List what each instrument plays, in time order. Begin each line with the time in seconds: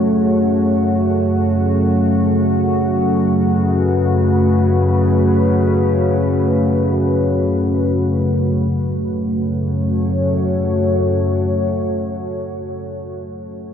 Already playing: synth drone F#2 C#3, ambient pad A3 F#4 C#5, singing bowl G#4
2.96 ambient pad B4
8.70 synth drone F#2 C#3, ambient pad A3
8.86 ambient pad F#4
9.02 ambient pad C#5